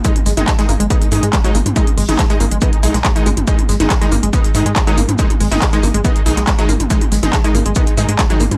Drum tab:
HH |xxoxxxoxxxoxxxox|xxoxxxoxxxoxxxox|xxoxxxoxxxoxxxox|xxoxxxoxxxoxxxox|
SH |x-x-x-x-x-x-x-x-|x---x-x-x-x-x-x-|x-x-x-x-x-x-x-x-|x---x-x-x-x-x-x-|
CP |----x-------x---|----x------xx---|----x-------x---|----x------xx---|
SD |--oooo------o---|---oo------oo---|--oooo------o---|---oo------oo---|
T2 |-o-o--o-------oo|-o-o--o-------oo|-o-o--o-------oo|-o-o--o-------oo|
BD |o---o---o---o---|o---o---o---o---|o---o---o---o---|o---o---o---o---|

HH |xxoxxxoxxxoxxxox|
SH |x-x-x-x-x-x-x-x-|
CP |----x-------x---|
SD |--oooo------o---|
T2 |-o-o--o-------oo|
BD |o---o---o---o---|